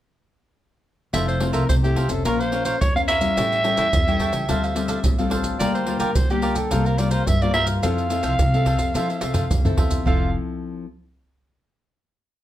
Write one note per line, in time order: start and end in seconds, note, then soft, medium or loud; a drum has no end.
1.13 1.49 F1 medium
1.13 1.66 F3 medium
1.13 1.37 A3 medium
1.13 1.37 C4 medium
1.13 1.37 E4 medium
1.13 1.40 F4 medium
1.13 1.40 A4 medium
1.13 1.40 C5 medium
1.13 1.26 E5 medium
1.13 1.41 E5 medium
1.13 pandeiro medium
1.13 maracas medium
1.13 surdo soft
1.28 1.52 C5 medium
1.28 pandeiro soft
1.28 maracas soft
1.40 1.78 A3 soft
1.40 1.78 C4 medium
1.40 1.79 E4 medium
1.40 1.52 F4 soft
1.40 1.52 A4 soft
1.40 1.52 C5 medium
1.40 1.52 E5 soft
1.40 pandeiro medium
1.53 1.66 C2 medium
1.53 1.63 F4 medium
1.53 1.63 A4 medium
1.53 1.67 A#4 medium
1.53 1.63 C5 medium
1.53 1.63 E5 medium
1.53 pandeiro soft
1.53 maracas medium
1.69 2.05 C2 medium
1.69 2.23 C3 medium
1.69 1.75 C5 medium
1.69 pandeiro medium
1.69 maracas medium
1.69 surdo medium
1.83 2.07 A3 medium
1.83 2.07 C4 medium
1.83 2.07 E4 medium
1.83 2.11 G4 medium
1.83 1.95 A4 soft
1.83 1.96 C5 soft
1.83 1.96 E5 soft
1.83 pandeiro soft
1.83 maracas soft
1.96 2.09 F4 medium
1.96 2.09 A4 medium
1.96 2.09 C5 medium
1.96 2.08 E5 medium
1.96 pandeiro medium
1.96 surdo medium
2.09 2.22 F1 medium
2.09 2.47 C#4 medium
2.09 2.48 F4 medium
2.09 2.24 A4 medium
2.09 2.24 A4 soft
2.09 2.48 C5 medium
2.09 2.23 C5 soft
2.09 2.23 E5 soft
2.09 pandeiro medium
2.09 maracas medium
2.25 2.73 A#1 medium
2.25 2.78 A#3 medium
2.25 2.38 F4 medium
2.25 2.41 A#4 medium
2.25 2.39 A#4 medium
2.25 2.39 C#5 medium
2.25 2.39 F5 medium
2.25 pandeiro medium
2.25 maracas medium
2.25 surdo medium
2.40 2.51 A#4 soft
2.40 2.64 C5 medium
2.40 2.52 C#5 soft
2.40 2.52 F5 soft
2.40 pandeiro soft
2.40 maracas soft
2.52 2.79 C#4 soft
2.52 2.64 F4 soft
2.52 2.79 F4 soft
2.52 2.65 A#4 soft
2.52 2.79 C5 medium
2.52 2.65 C#5 soft
2.52 2.65 F5 medium
2.52 pandeiro medium
2.65 2.75 F4 medium
2.65 2.75 A#4 medium
2.65 2.79 C5 medium
2.65 2.75 C#5 medium
2.65 2.76 F5 medium
2.65 pandeiro medium
2.65 maracas medium
2.81 3.29 E2 medium
2.81 2.94 C#5 medium
2.81 pandeiro medium
2.81 maracas medium
2.81 surdo medium
2.96 3.19 C#4 medium
2.96 3.19 F4 medium
2.96 3.07 A#4 soft
2.96 3.19 C5 medium
2.96 3.07 C#5 soft
2.96 3.08 F5 soft
2.96 3.02 F5 medium
2.96 pandeiro soft
2.96 maracas soft
3.08 3.35 F4 medium
3.08 3.35 A#4 medium
3.08 3.36 C#5 medium
3.08 5.28 E5 loud
3.08 3.36 F5 medium
3.08 pandeiro medium
3.08 maracas medium
3.20 3.59 G3 medium
3.20 3.59 C#4 medium
3.20 3.59 E4 medium
3.20 pandeiro medium
3.20 maracas medium
3.37 3.73 A1 medium
3.37 3.90 A2 medium
3.37 3.62 E4 medium
3.37 3.63 A4 medium
3.37 3.64 C#5 medium
3.37 3.64 G5 medium
3.37 pandeiro medium
3.37 maracas medium
3.37 surdo medium
3.52 pandeiro soft
3.52 maracas soft
3.63 3.90 G3 medium
3.63 3.90 C#4 medium
3.63 3.76 E4 medium
3.63 3.91 E4 medium
3.63 3.76 A4 soft
3.63 3.76 C#5 medium
3.63 3.77 G5 soft
3.63 pandeiro medium
3.77 3.90 E2 medium
3.77 3.87 E4 medium
3.77 3.87 A4 medium
3.77 3.87 C#5 medium
3.77 3.87 G5 medium
3.77 pandeiro medium
3.77 maracas medium
3.92 4.29 E2 medium
3.92 4.45 E3 medium
3.92 pandeiro medium
3.92 maracas medium
3.92 surdo loud
4.06 4.44 G3 medium
4.06 4.44 C#4 medium
4.06 4.44 E4 medium
4.06 4.19 A4 soft
4.06 4.19 C#5 soft
4.06 4.20 G5 soft
4.06 pandeiro soft
4.06 maracas soft
4.20 4.33 E4 medium
4.20 4.33 A4 medium
4.20 4.32 C#5 medium
4.20 4.31 G5 medium
4.20 pandeiro medium
4.20 surdo medium
4.33 4.45 C#2 medium
4.33 4.47 A4 soft
4.33 4.47 C#5 soft
4.33 pandeiro medium
4.33 maracas medium
4.48 4.96 D2 medium
4.48 5.01 D3 medium
4.48 4.72 G3 medium
4.48 4.72 C4 medium
4.48 4.61 D4 medium
4.48 4.72 F4 medium
4.48 4.62 A4 medium
4.48 4.62 C5 medium
4.48 4.62 F5 medium
4.48 pandeiro medium
4.48 maracas medium
4.48 surdo medium
4.64 4.75 A4 soft
4.64 4.75 C5 soft
4.64 4.76 F5 soft
4.64 pandeiro soft
4.64 maracas soft
4.75 5.13 G3 medium
4.75 5.13 C4 soft
4.75 4.87 D4 soft
4.75 5.13 F4 medium
4.75 4.87 A4 medium
4.75 4.88 C5 soft
4.75 4.88 F5 soft
4.75 pandeiro medium
4.75 maracas medium
4.88 4.98 D4 medium
4.88 4.98 A4 medium
4.88 4.99 C5 medium
4.88 4.99 F5 medium
4.88 pandeiro medium
4.88 maracas medium
5.04 5.52 A1 medium
5.04 5.57 A2 soft
5.04 pandeiro medium
5.04 maracas medium
5.04 surdo medium
5.18 5.56 G3 medium
5.18 5.56 C4 medium
5.18 5.56 F4 medium
5.18 5.30 A4 soft
5.18 5.30 C5 soft
5.18 5.30 F5 soft
5.18 pandeiro soft
5.18 maracas soft
5.30 5.58 D4 medium
5.30 5.58 A4 medium
5.30 5.59 C5 medium
5.30 5.59 F5 medium
5.30 pandeiro medium
5.44 pandeiro medium
5.44 maracas medium
5.59 5.96 D2 loud
5.59 6.13 D3 medium
5.59 5.83 G3 medium
5.59 5.83 A#3 medium
5.59 5.85 F4 medium
5.59 5.84 F4 medium
5.59 5.86 A#4 medium
5.59 5.73 D5 medium
5.59 5.86 D5 medium
5.59 5.87 G5 medium
5.59 pandeiro medium
5.59 maracas medium
5.59 surdo medium
5.74 5.99 C5 medium
5.74 pandeiro soft
5.74 maracas soft
5.86 6.13 G3 medium
5.86 6.13 A#3 medium
5.86 5.98 F4 soft
5.86 6.14 F4 medium
5.86 5.98 A#4 soft
5.86 5.99 D5 medium
5.86 5.99 G5 medium
5.86 pandeiro medium
5.99 6.13 D2 medium
5.99 6.10 F4 medium
5.99 6.17 A#4 medium
5.99 6.10 A#4 medium
5.99 6.10 D5 medium
5.99 6.10 G5 medium
5.99 pandeiro medium
5.99 maracas medium
6.15 6.51 D2 medium
6.15 6.69 D3 medium
6.15 6.30 C5 medium
6.15 pandeiro medium
6.15 maracas medium
6.15 surdo loud
6.30 6.67 G3 medium
6.30 6.68 A#3 medium
6.30 6.68 F4 medium
6.30 6.57 G4 medium
6.30 6.41 A#4 soft
6.30 6.42 D5 soft
6.30 6.42 G5 soft
6.30 pandeiro soft
6.30 maracas soft
6.42 6.56 F4 medium
6.42 6.55 A#4 medium
6.42 6.55 D5 medium
6.42 6.54 G5 medium
6.42 pandeiro medium
6.55 6.68 D2 medium
6.55 6.87 A4 medium
6.55 6.70 A#4 soft
6.55 6.70 D5 soft
6.55 6.69 G5 soft
6.55 pandeiro medium
6.55 maracas medium
6.71 7.19 C2 medium
6.71 7.25 C3 soft
6.71 6.95 G3 medium
6.71 6.95 A#3 medium
6.71 6.84 F4 medium
6.71 6.95 F4 medium
6.71 6.84 A#4 medium
6.71 6.84 C5 medium
6.71 6.84 F5 medium
6.71 pandeiro medium
6.71 maracas medium
6.71 surdo medium
6.85 7.00 A#4 medium
6.85 6.97 A#4 soft
6.85 6.98 C5 soft
6.85 6.98 F5 medium
6.85 pandeiro soft
6.85 maracas soft
6.98 7.25 G3 soft
6.98 7.25 A#3 medium
6.98 7.10 F4 soft
6.98 7.26 F4 medium
6.98 7.10 A#4 soft
6.98 7.10 C5 soft
6.98 7.10 D5 medium
6.98 7.11 F5 medium
6.98 pandeiro medium
6.98 maracas medium
7.11 7.21 F4 medium
7.11 7.21 A#4 medium
7.11 7.28 C5 medium
7.11 7.21 C5 medium
7.11 7.22 F5 medium
7.11 pandeiro medium
7.11 maracas medium
7.27 7.80 G2 medium
7.27 7.75 G2 medium
7.27 7.43 E5 medium
7.27 pandeiro medium
7.27 maracas medium
7.27 surdo medium
7.42 7.79 G3 medium
7.42 7.79 A#3 medium
7.42 7.79 F4 medium
7.42 7.53 A#4 soft
7.42 7.54 C5 soft
7.42 7.53 D5 medium
7.42 7.54 F5 soft
7.42 pandeiro soft
7.42 maracas soft
7.53 7.81 F4 medium
7.53 7.82 A#4 medium
7.53 7.82 C5 medium
7.53 7.66 E5 loud
7.53 7.82 F5 medium
7.53 pandeiro medium
7.67 pandeiro medium
7.67 maracas medium
7.82 8.19 F2 medium
7.82 8.36 F3 medium
7.82 8.06 C4 medium
7.82 8.07 E4 medium
7.82 8.08 F4 medium
7.82 8.09 A4 medium
7.82 8.07 A4 medium
7.82 8.09 C5 medium
7.82 8.10 E5 medium
7.82 9.75 F5 loud
7.82 pandeiro medium
7.82 maracas medium
7.82 surdo medium
7.98 pandeiro soft
7.98 maracas soft
8.09 8.37 C4 medium
8.09 8.37 E4 medium
8.09 8.21 F4 soft
8.09 8.22 A4 soft
8.09 8.37 A4 medium
8.09 8.22 C5 soft
8.09 8.22 E5 soft
8.09 pandeiro medium
8.09 maracas medium
8.23 8.36 C2 medium
8.23 8.33 F4 medium
8.23 8.33 A4 medium
8.23 8.33 C5 medium
8.23 8.33 E5 medium
8.23 pandeiro medium
8.23 maracas medium
8.39 8.75 C2 loud
8.39 8.92 C3 medium
8.39 pandeiro medium
8.39 maracas medium
8.39 surdo loud
8.53 8.91 C4 medium
8.53 8.91 A4 medium
8.53 8.65 A4 soft
8.53 8.65 C5 soft
8.53 8.65 E5 soft
8.53 pandeiro soft
8.53 maracas soft
8.65 8.79 F4 medium
8.65 8.78 A4 medium
8.65 8.78 C5 medium
8.65 8.77 E5 medium
8.65 pandeiro medium
8.65 surdo medium
8.78 8.92 F2 medium
8.78 8.93 A4 soft
8.78 8.93 C5 soft
8.78 8.92 E5 soft
8.78 pandeiro medium
8.78 maracas medium
8.94 9.48 F3 soft
8.94 9.19 F3 medium
8.94 9.18 C4 medium
8.94 9.18 E4 medium
8.94 9.07 F4 medium
8.94 9.08 A4 medium
8.94 9.18 A4 medium
8.94 9.08 C5 medium
8.94 9.07 E5 medium
8.94 pandeiro medium
8.94 maracas medium
8.94 surdo medium
9.09 9.20 A4 soft
9.09 9.20 C5 soft
9.09 9.21 E5 soft
9.09 pandeiro soft
9.09 maracas soft
9.21 9.48 C2 medium
9.21 9.60 C4 medium
9.21 9.32 F4 soft
9.21 9.33 A4 soft
9.21 9.60 A4 medium
9.21 9.33 C5 soft
9.21 9.33 E5 medium
9.21 pandeiro medium
9.21 tamborim medium
9.21 maracas medium
9.34 9.44 F4 medium
9.34 9.44 A4 medium
9.34 9.44 C5 medium
9.34 9.45 E5 medium
9.34 surdo medium
9.34 pandeiro medium
9.34 maracas medium
9.50 9.76 D2 medium
9.50 10.03 C3 soft
9.50 surdo medium
9.50 pandeiro medium
9.50 maracas medium
9.50 surdo loud
9.65 10.02 C4 medium
9.65 10.02 E4 soft
9.65 10.02 A4 medium
9.65 9.77 A4 soft
9.65 9.77 C5 soft
9.65 9.77 E5 soft
9.65 surdo medium
9.65 pandeiro soft
9.65 maracas soft
9.77 10.03 E2 medium
9.77 10.05 F4 medium
9.77 10.05 A4 medium
9.77 10.05 C5 medium
9.77 10.05 E5 medium
9.77 pandeiro medium
9.77 surdo medium
9.91 pandeiro medium
9.91 maracas medium
9.91 surdo medium
10.05 10.33 F1 medium
10.05 10.85 F3 medium
10.05 10.85 C4 medium
10.05 10.85 E4 medium
10.05 10.29 F4 medium
10.05 10.29 A4 medium
10.05 10.85 A4 medium
10.05 10.29 C5 medium
10.05 10.29 E5 medium
10.05 10.33 F5 medium
10.05 surdo loud